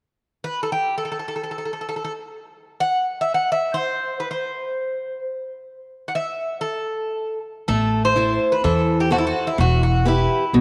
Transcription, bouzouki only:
0.44 0.62 B4 medium
0.63 0.72 A4 medium
0.72 0.97 G4 medium
0.98 1.04 A4 medium
1.05 1.10 A4 soft
1.12 1.18 A4 soft
1.19 1.27 A4 soft
1.28 1.35 A4 medium
1.36 1.42 A4 soft
1.43 1.50 A4 soft
1.51 1.57 A4 soft
1.58 1.64 A4 soft
1.65 1.72 A4 soft
1.73 1.80 A4 soft
1.81 1.87 A4 soft
1.89 1.95 A4 medium
1.96 2.03 A4 soft
2.05 2.12 A4 medium
2.80 3.18 F#5 medium
3.21 3.34 E5 medium
3.34 3.51 F#5 medium
3.52 3.75 E5 medium
3.74 4.20 C5 medium
4.20 4.30 B4 medium
4.31 5.19 C5 medium
6.08 6.15 F#5 medium
6.15 6.61 E5 medium
6.61 7.38 A4 medium
7.68 8.02 A4 medium
8.05 8.49 C5 medium
8.52 8.63 B4 medium
8.64 9.00 A4 medium
9.00 9.11 G4 medium
9.12 9.18 F#4 medium
9.18 9.25 E4 medium
9.27 9.46 F#4 medium
9.47 9.58 E4 medium
9.61 9.82 F#4 medium
9.83 10.05 F#4 medium
10.08 10.61 E4 medium

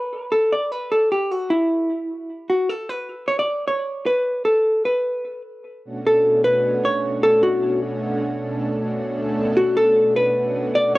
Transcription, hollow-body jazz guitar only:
0.00 0.34 B4 medium
0.32 0.52 A4 medium
0.52 0.72 D5 medium
0.72 0.92 B4 medium
0.92 1.11 A4 medium
1.12 1.31 G4 medium
1.31 1.52 F#4 medium
1.50 2.52 E4 medium
2.50 2.69 F#4 medium
2.69 2.89 A4 medium
2.89 3.30 B4 medium
3.28 3.39 C#5 medium
3.39 3.67 D5 medium
3.68 4.09 C#5 medium
4.06 4.45 B4 medium
4.45 4.83 A4 medium
4.85 5.41 B4 medium
6.06 6.44 A4 medium
6.44 6.85 B4 medium
6.85 7.25 C#5 medium
7.23 7.42 A4 medium
7.43 7.79 F#4 medium
9.57 9.76 F#4 medium
9.77 10.16 A4 medium
10.16 10.78 B4 medium
10.75 10.94 D5 medium

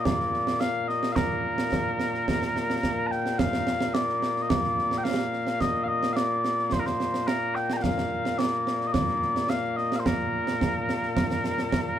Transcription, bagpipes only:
0.00 11.99 A#2 medium
0.00 11.99 A#3 medium
0.04 0.60 D5 medium
0.60 0.88 F5 loud
0.88 1.12 D#5 medium
1.12 3.07 A#4 medium
1.12 1.16 F5 medium
3.07 3.11 A#5 medium
3.11 3.39 G5 medium
3.39 3.94 F5 loud
3.94 4.42 D5 medium
4.42 4.49 D#5 medium
4.49 4.98 D5 loud
4.98 5.04 G5 medium
5.04 5.60 F5 medium
5.60 5.84 D#5 medium
5.84 5.88 F5 medium
5.88 6.13 D#5 medium
6.13 6.73 D5 loud
6.13 6.16 F5 loud
6.73 6.80 C5 medium
6.80 6.86 A#4 medium
6.86 7.27 C5 medium
7.27 7.55 A#4 medium
7.55 7.73 G5 medium
7.73 7.82 G5 medium
7.73 7.77 A#5 medium
7.82 8.38 F5 medium
8.38 8.87 D5 medium
8.87 8.92 D#5 medium
8.92 9.50 D5 medium
9.50 9.76 F5 medium
9.76 9.96 D#5 medium
9.96 10.06 C5 medium
9.96 9.99 F5 medium
10.06 11.99 A#4 medium

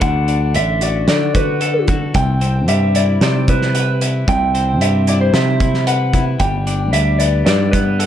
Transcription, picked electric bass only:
0.01 0.57 D2 medium
0.55 1.05 A1 medium
1.08 2.11 D3 medium
2.15 2.68 C2 medium
2.68 3.17 G2 medium
3.21 4.24 C3 medium
4.28 4.80 C2 medium
4.80 5.30 G2 medium
5.33 6.36 C3 medium
6.40 6.93 G1 medium
6.93 7.43 D2 medium
7.46 8.06 G2 medium

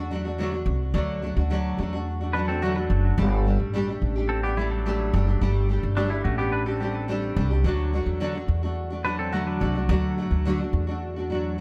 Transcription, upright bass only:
0.00 0.62 E2 medium
0.66 0.92 C2 medium
0.94 1.33 D2 medium
1.37 1.75 D2 medium
1.78 2.86 E2 medium
2.90 3.16 F#1 medium
3.18 3.56 G1 loud
3.60 3.98 A1 medium
4.02 5.09 A1 medium
5.13 5.39 F#1 loud
5.41 5.80 G1 medium
5.83 6.22 G1 medium
6.25 7.33 A1 medium
7.36 7.62 C2 loud
7.64 8.03 D2 medium
8.06 8.45 E2 medium
8.48 9.57 E2 medium
9.61 9.87 C2 medium
9.89 10.28 D2 loud
10.31 10.69 D2 medium
10.73 11.60 E2 medium

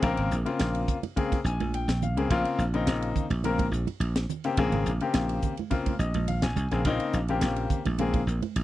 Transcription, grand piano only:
0.02 0.33 C#3 loud
0.02 0.33 A#3 medium
0.02 0.33 C4 medium
0.02 0.33 A#4 loud
0.45 0.96 C#3 medium
0.45 0.96 A#3 medium
0.45 0.96 C4 medium
0.45 0.96 F4 medium
1.16 1.37 C#3 medium
1.16 1.37 A#3 medium
1.16 1.37 C4 medium
1.16 1.38 G#4 medium
1.46 1.53 C4 soft
1.46 1.53 D#4 soft
1.46 1.72 G#5 medium
1.75 2.01 G5 medium
2.03 2.29 F5 medium
2.17 2.27 C#3 medium
2.17 2.27 A#3 medium
2.17 2.27 C4 medium
2.17 2.27 G#4 medium
2.30 2.61 C#3 loud
2.30 2.61 A#3 loud
2.30 2.61 C4 medium
2.30 2.61 F4 loud
2.73 3.23 C#3 medium
2.73 3.24 A#3 medium
2.73 3.24 C4 medium
2.73 3.24 D#4 medium
3.44 3.65 C#3 medium
3.44 3.65 A#3 medium
3.44 3.65 C4 medium
3.44 3.65 A#4 medium
3.73 3.80 C4 soft
3.73 3.81 G#4 soft
4.45 4.54 C#3 medium
4.45 4.54 A#3 medium
4.45 4.54 C4 medium
4.45 4.55 G4 medium
4.58 4.88 C#3 loud
4.58 4.88 A#3 medium
4.58 4.88 C4 medium
4.58 4.89 G#4 loud
5.01 5.51 C#3 medium
5.01 5.51 A#3 medium
5.01 5.51 C4 medium
5.01 5.51 G4 medium
5.70 5.92 C#3 medium
5.70 5.92 A#3 medium
5.70 5.92 C4 medium
5.70 5.92 F4 medium
5.99 6.07 C4 soft
5.99 6.07 G4 soft
5.99 6.26 D#5 medium
6.28 6.42 F5 medium
6.44 6.83 G#5 medium
6.71 6.81 C#3 medium
6.71 6.81 A#3 medium
6.71 6.81 C4 medium
6.71 6.82 G#4 medium
6.85 7.16 C#3 medium
6.85 7.16 A#3 medium
6.85 7.16 C4 medium
6.85 7.16 D#4 loud
7.29 7.79 C#3 medium
7.29 7.79 A#3 medium
7.29 7.79 C4 medium
7.29 7.79 G4 medium
7.99 8.20 C#3 medium
7.99 8.20 A#3 medium
7.99 8.20 C4 medium
7.99 8.20 G#4 medium
8.27 8.35 C4 soft
8.27 8.35 A#4 soft

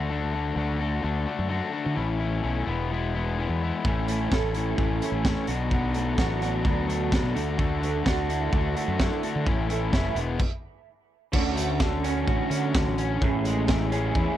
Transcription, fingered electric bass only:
0.00 0.52 D2 medium
0.56 0.99 D2 medium
1.04 1.25 D2 medium
1.39 1.60 F#2 medium
1.86 1.96 D3 medium
1.97 2.40 A1 medium
2.44 2.65 B1 medium
2.67 3.45 E1 medium
3.49 3.71 E2 medium
3.85 4.28 A1 medium
4.32 4.75 A1 medium
4.78 5.00 A1 medium
5.12 5.34 A1 medium
5.48 6.15 B1 medium
6.18 6.61 A1 medium
6.65 7.20 D2 medium
7.23 7.34 B2 medium
7.35 8.02 D2 medium
8.06 8.49 D2 medium
8.53 8.74 D2 medium
8.88 9.10 F#2 loud
9.36 9.46 D3 medium
9.47 9.90 A1 medium
9.93 10.15 F#1 medium
10.15 10.38 E1 loud
11.34 12.24 D2 loud
12.28 12.39 A1 loud
12.50 12.72 D3 medium
12.75 12.85 D2 medium
12.87 13.19 A1 medium
13.21 14.11 A1 loud
14.15 14.26 E2 medium

